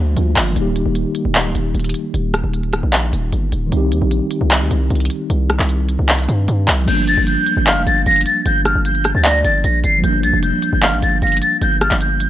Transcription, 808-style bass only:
0.00 0.16 D2 loud
0.17 0.36 D2 loud
0.36 0.55 G1 loud
0.56 0.85 D#1 loud
0.86 1.05 D#1 loud
1.25 1.46 D#1 loud
1.45 1.54 D1 loud
1.55 1.74 D#1 loud
1.75 1.94 D#1 loud
2.14 2.42 D#1 loud
2.44 2.82 D#1 loud
2.83 3.12 A#1 loud
3.13 3.32 D#1 loud
3.32 3.51 G1 loud
3.52 3.71 D#1 loud
3.72 3.93 C2 loud
3.92 4.01 D#2 loud
4.02 4.21 A#1 loud
4.41 4.62 C2 loud
4.61 4.70 D2 loud
4.71 4.90 C2 loud
4.90 5.09 C2 loud
5.30 5.58 C2 loud
5.60 5.97 C2 loud
5.99 6.27 C2 loud
6.29 6.47 G2 loud
6.48 6.67 G2 loud
6.68 6.87 C2 loud
6.88 7.16 G1 loud
7.17 7.36 G1 loud
7.57 7.78 G1 loud
7.77 7.86 F1 loud
7.86 8.05 G1 loud
8.06 8.25 G1 loud
8.46 8.74 G1 loud
8.75 9.13 G1 loud
9.15 9.43 D2 loud
9.44 9.63 G1 loud
9.64 9.83 A#1 loud
9.84 10.03 G1 loud
10.04 10.25 G1 loud
10.23 10.33 A#1 loud
10.33 10.52 F1 loud
10.73 10.94 G1 loud
10.92 11.02 A1 medium
11.02 11.21 G1 loud
11.22 11.41 G1 loud
11.61 11.90 G1 loud
11.91 12.29 G1 loud

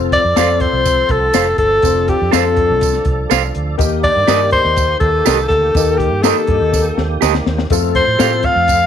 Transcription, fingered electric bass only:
0.00 0.17 F1 medium
0.25 0.34 F2 medium
0.37 0.66 F2 medium
0.73 1.02 C2 medium
1.10 1.29 C2 medium
1.35 1.54 F1 medium
1.58 1.78 G1 medium
1.83 2.12 F1 loud
2.22 2.31 F2 medium
2.33 2.72 F2 medium
2.70 2.99 C2 medium
3.05 3.25 C2 medium
3.31 3.50 C2 medium
3.56 3.75 D2 medium
3.80 4.08 D#2 loud
4.16 4.26 G2 medium
4.28 4.57 G2 medium
4.65 4.94 D#2 medium
5.01 5.21 D#2 medium
5.26 5.45 C2 medium
5.50 5.69 D2 medium
5.75 6.13 D#2 loud
6.13 6.32 G2 medium
6.49 6.58 G2 medium
6.61 6.90 D#2 medium
6.98 7.17 D#2 medium
7.22 7.41 D2 medium
7.46 7.66 D#2 medium
7.71 7.99 F2 medium
8.07 8.17 A2 medium
8.20 8.48 A2 medium
8.56 8.85 F2 medium

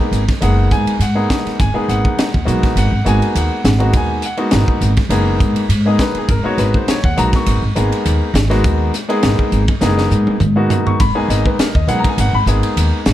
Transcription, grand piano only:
0.00 0.21 G#3 medium
0.00 0.22 A#3 medium
0.00 0.21 B3 medium
0.00 0.22 D#4 medium
0.00 0.22 G#4 loud
0.41 0.94 G#3 medium
0.41 0.95 A#3 medium
0.41 0.95 B3 medium
0.41 0.95 D#4 medium
0.41 0.95 G#4 medium
0.41 0.71 F#5 medium
0.72 1.00 G#5 medium
1.02 1.56 F#5 medium
1.15 1.57 G#3 medium
1.15 1.57 A#3 medium
1.15 1.57 B3 medium
1.15 1.57 D#4 medium
1.15 1.57 G#4 medium
1.60 1.88 G#5 medium
1.74 2.27 G#3 medium
1.74 2.27 A#3 medium
1.74 2.27 B3 medium
1.74 2.27 D#4 medium
1.74 2.27 G#4 medium
1.89 2.44 F#5 medium
2.45 2.89 G#3 medium
2.45 2.90 A#3 medium
2.45 2.90 B3 medium
2.45 2.90 D#4 medium
2.45 2.90 F#4 medium
2.78 3.06 F#5 medium
3.05 3.59 G#3 medium
3.05 3.59 A#3 medium
3.05 3.59 B3 medium
3.05 3.59 D#4 medium
3.05 3.59 F#4 medium
3.05 3.35 G#5 medium
3.38 3.92 F#5 medium
3.79 4.21 G#3 medium
3.79 4.21 A#3 medium
3.79 4.21 B3 medium
3.79 4.21 D#4 medium
3.79 4.21 F#4 medium
3.97 4.24 G#5 medium
4.26 4.79 F#5 medium
4.37 4.90 G#3 medium
4.37 4.90 A#3 medium
4.37 4.91 B3 medium
4.37 4.91 D#4 medium
4.37 4.91 F#4 medium
5.10 5.64 G#3 medium
5.10 5.64 A#3 medium
5.10 5.64 B3 medium
5.10 5.64 D#4 medium
5.10 5.64 G#4 medium
5.86 6.27 G#3 medium
5.86 6.27 A#3 medium
5.86 6.27 B3 medium
5.86 6.27 D#4 medium
5.86 6.16 G#4 medium
5.86 6.00 D#5 medium
6.01 6.16 B4 medium
6.18 6.30 G#4 medium
6.30 6.45 A#4 medium
6.43 6.96 G#3 medium
6.43 6.97 A#3 medium
6.43 6.97 B3 medium
6.43 6.97 D#4 medium
6.43 6.97 F#4 medium
6.43 6.59 C#5 medium
6.59 6.74 B4 medium
6.76 6.88 C5 medium
6.89 7.04 C#5 medium
7.05 7.17 F#5 medium
7.17 7.60 G#3 medium
7.17 7.60 A#3 medium
7.17 7.60 B3 medium
7.17 7.60 D#4 medium
7.17 7.60 F#4 medium
7.17 7.33 A#5 loud
7.36 8.78 C#6 medium
7.75 8.29 G#3 medium
7.75 8.29 A#3 medium
7.75 8.29 B3 medium
7.75 8.29 D#4 medium
7.75 8.29 G#4 medium
8.50 8.91 G#3 medium
8.50 8.91 A#3 medium
8.50 8.91 B3 medium
8.50 8.92 D#4 medium
8.50 8.91 F#4 medium
9.08 9.61 G#3 medium
9.08 9.61 A#3 medium
9.08 9.61 B3 medium
9.08 9.62 D#4 medium
9.08 9.61 G#4 loud
9.81 10.34 G#3 medium
9.81 10.35 A#3 medium
9.81 10.35 B3 medium
9.81 10.35 D#4 medium
9.81 10.35 G#4 medium
10.56 10.97 G#3 medium
10.56 10.97 A#3 medium
10.56 10.97 B3 medium
10.56 10.98 D#4 medium
10.56 10.98 F#4 medium
10.86 10.99 C#6 medium
11.00 11.16 B5 medium
11.15 11.68 G#3 medium
11.15 11.67 A#3 medium
11.15 11.67 B3 medium
11.15 11.68 D#4 medium
11.15 11.68 G#4 medium
11.15 11.29 G#5 medium
11.30 11.45 D#5 medium
11.47 11.59 B4 medium
11.60 11.75 A#4 medium
11.76 11.88 D#5 medium
11.88 12.31 G#3 medium
11.88 12.31 A#3 medium
11.88 12.31 B3 medium
11.88 12.31 D#4 medium
11.88 12.32 G#4 medium
11.88 11.98 F#5 medium
11.99 12.08 A#5 medium
12.09 12.18 G#5 medium
12.21 12.35 F#5 medium
12.35 12.42 B5 medium
12.47 13.00 G#3 medium
12.47 13.00 A#3 medium
12.47 13.01 B3 medium
12.47 13.01 D#4 medium
12.47 13.01 G#4 medium

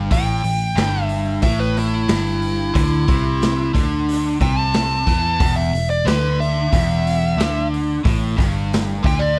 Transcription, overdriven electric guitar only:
0.11 0.42 A2 medium
0.44 0.70 A2 medium
0.76 1.42 G2 loud
1.42 2.08 A2 medium
2.08 2.74 G2 medium
2.74 3.07 D3 medium
3.08 3.73 C3 medium
3.74 4.39 D3 loud
4.41 5.06 C3 medium
5.07 5.39 E3 loud
5.39 5.71 E2 medium
5.73 5.99 E2 medium
6.05 6.70 D3 loud
6.72 7.37 E2 loud
7.38 8.03 D3 medium
8.03 8.35 A2 medium
8.36 9.01 G2 medium
9.03 9.39 D3 loud

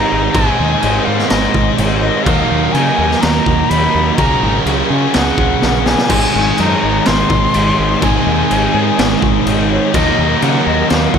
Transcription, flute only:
0.00 0.34 A#5 loud
0.33 1.06 G#5 loud
1.05 1.30 F5 medium
1.28 1.71 D#5 loud
2.00 2.25 D#5 medium
2.23 2.74 F5 loud
2.72 3.23 G#5 loud
3.21 3.71 A#5 loud
3.69 4.16 B5 loud
4.17 4.60 A#5 loud
4.90 5.16 G#5 medium
5.14 5.88 F#5 medium
5.86 6.62 G#5 loud
6.60 7.08 A#5 loud
7.06 8.05 C6 loud
8.03 9.44 G#5 loud
9.71 9.96 C#5 medium
9.94 10.44 D#5 medium
10.43 10.69 F#5 medium
10.68 10.91 D#5 medium
10.89 11.16 F5 loud
11.15 11.19 F#5 loud

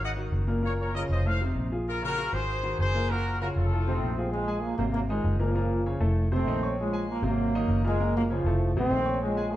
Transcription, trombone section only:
3.86 4.30 A3 medium
3.86 4.29 C4 loud
4.31 4.61 F3 medium
4.31 4.60 G#3 loud
4.61 4.78 F3 medium
4.61 4.75 A#3 medium
4.76 4.86 F#3 medium
4.76 4.84 A#3 medium
4.92 5.02 F#3 medium
4.92 4.99 A#3 loud
5.07 5.37 F3 medium
5.07 5.36 G#3 medium
5.39 5.97 C#3 medium
5.39 5.96 F3 medium
6.33 6.75 A3 medium
6.33 6.75 C4 loud
6.79 7.07 F3 medium
6.79 7.07 G#3 loud
7.09 7.23 F3 medium
7.09 7.23 A#3 loud
7.25 7.81 F#3 medium
7.25 7.81 A#3 loud
7.86 8.13 F3 medium
7.86 8.14 G#3 loud
8.16 8.23 F#3 medium
8.16 8.23 A#3 loud
8.31 8.59 C#3 medium
8.31 8.73 F3 medium
8.77 9.20 A3 medium
8.77 9.19 C4 loud
9.22 9.51 F3 medium
9.22 9.51 G#3 loud

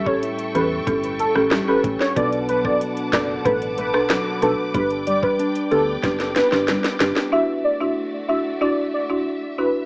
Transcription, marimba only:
0.06 0.51 C#4 medium
0.06 0.51 G4 medium
0.06 0.51 A4 medium
0.55 0.85 C#4 medium
0.55 0.85 G4 medium
0.55 0.85 A4 medium
0.87 1.02 C#4 medium
0.87 1.02 G4 medium
0.87 1.02 A4 loud
1.36 1.51 C#4 medium
1.36 1.51 G4 medium
1.36 1.51 A4 medium
1.68 1.83 C#4 medium
1.68 1.83 G4 medium
1.68 1.83 A4 medium
2.16 2.61 D4 loud
2.16 2.61 A4 medium
2.16 2.61 B4 loud
2.65 3.09 D4 medium
2.65 3.09 A4 medium
2.65 3.10 B4 medium
3.13 3.43 D4 medium
3.13 3.43 A4 medium
3.13 3.43 B4 medium
3.45 3.60 D4 loud
3.45 3.60 A4 medium
3.45 3.61 B4 loud
3.94 4.09 D4 medium
3.94 4.09 A4 medium
3.94 4.09 B4 medium
4.42 4.57 D4 medium
4.42 4.57 A4 medium
4.42 4.57 B4 medium
4.74 5.19 D4 loud
4.74 5.19 G4 medium
4.74 5.19 B4 loud
5.22 5.67 D4 medium
5.22 5.67 G4 medium
5.22 5.67 B4 medium
5.71 6.01 D4 medium
5.71 6.01 G4 medium
5.71 6.01 B4 medium
6.03 6.18 D4 medium
6.03 6.18 G4 medium
6.03 6.19 B4 loud
6.52 6.67 D4 medium
6.52 6.67 G4 medium
6.52 6.67 B4 medium
7.00 7.15 D4 medium
7.00 7.15 G4 medium
7.00 7.15 B4 medium
7.32 7.47 D4 medium
7.32 7.47 E4 medium
7.32 7.48 F#4 loud
7.81 7.96 D4 medium
7.81 7.96 E4 medium
7.81 7.96 F#4 medium
8.29 8.44 D4 medium
8.29 8.44 E4 medium
8.29 8.44 F#4 medium
8.61 8.76 D4 medium
8.61 8.76 E4 medium
8.61 8.77 F#4 medium
9.10 9.54 D4 medium
9.10 9.54 E4 medium
9.10 9.55 F#4 medium
9.58 9.86 D4 medium
9.58 9.86 E4 medium
9.58 9.86 F#4 medium

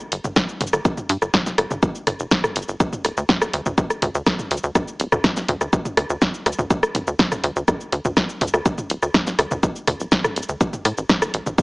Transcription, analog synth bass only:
0.12 0.20 G1 medium
0.24 0.32 G1 medium
0.36 0.44 G1 loud
0.61 0.68 G1 medium
0.73 0.81 G1 medium
0.85 0.93 G1 loud
1.09 1.17 G2 medium
1.22 1.29 G1 medium
1.34 1.42 G1 loud
1.46 1.54 F1 medium
1.58 1.66 G1 loud
1.71 1.78 G1 medium
1.83 1.90 G1 loud
2.07 2.15 G1 medium
2.20 2.27 F1 medium
2.31 2.39 G1 loud
2.56 2.64 G1 medium
2.68 2.76 G1 medium
2.80 2.88 D2 loud
3.05 3.12 D1 loud
3.17 3.25 D2 medium
3.29 3.37 D2 loud
3.41 3.49 A1 medium
3.53 3.61 D2 loud
3.66 3.73 D2 medium
3.78 3.86 D2 loud
4.02 4.10 D2 medium
4.15 4.22 D2 medium
4.26 4.34 D2 loud
4.51 4.59 D2 medium
4.63 4.71 D2 medium
4.75 4.83 D2 loud
5.00 5.08 D1 loud
5.12 5.20 D2 medium
5.24 5.32 D2 loud
5.37 5.44 A1 medium
5.48 5.56 D2 loud
5.61 5.68 D2 medium
5.73 5.81 D2 loud
5.97 6.05 D2 medium
6.10 6.17 D2 medium
6.22 6.29 D2 loud
6.46 6.54 D2 medium
6.59 6.66 D2 medium
6.70 6.78 D2 loud
6.95 7.03 D1 loud
7.07 7.15 D2 medium
7.19 7.27 D2 loud
7.32 7.39 A1 medium
7.44 7.51 D2 loud
7.56 7.64 D2 medium
7.68 7.76 D2 loud
7.92 8.00 D2 medium
8.05 8.12 D2 medium
8.17 8.25 D2 loud
8.41 8.49 D2 medium
8.54 8.61 D2 medium
8.66 8.73 D2 loud
8.90 8.98 D1 medium
9.02 9.10 D2 medium
9.14 9.22 D2 loud
9.27 9.34 A1 medium
9.39 9.47 D2 loud
9.51 9.59 D2 medium
9.63 9.71 D2 loud
9.88 9.95 D2 medium
10.00 10.07 D1 medium
10.12 10.20 D2 loud
10.36 10.44 D1 medium
10.49 10.56 D2 medium
10.61 10.69 A1 loud
10.85 10.93 A2 medium
10.98 11.05 A1 medium
11.09 11.17 A1 loud
11.22 11.29 G1 medium
11.34 11.42 A1 medium
11.46 11.54 A1 medium
11.58 11.62 A1 loud

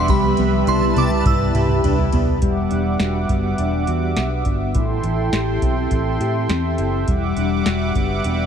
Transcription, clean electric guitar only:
0.00 0.37 B3 medium
0.00 0.14 D4 medium
0.08 2.42 G3 medium
0.08 1.54 G4 medium
0.38 0.96 B3 medium
0.67 1.25 E4 medium
0.96 2.12 B3 medium
1.25 1.83 E4 medium
1.54 3.00 G4 medium
1.84 1.99 D4 medium
1.99 2.48 E4 medium
2.13 3.29 B3 medium
2.42 4.74 G3 medium
2.71 3.57 D4 medium
3.00 3.86 F#4 medium
3.29 4.15 B3 soft
3.58 4.44 D4 medium
3.87 4.81 F#4 medium
4.17 4.81 B3 medium
4.46 4.81 D4 medium
4.74 7.07 E3 medium
5.03 5.90 E4 medium
5.33 6.20 G4 medium
5.62 6.48 C4 soft
5.91 6.78 E4 medium
6.20 7.66 G4 medium
6.49 7.13 C4 medium
6.78 7.37 E4 medium
7.08 8.46 G3 medium
7.37 8.23 D4 medium
7.66 8.46 F#4 medium
7.95 8.46 B3 soft
8.25 8.46 D4 medium

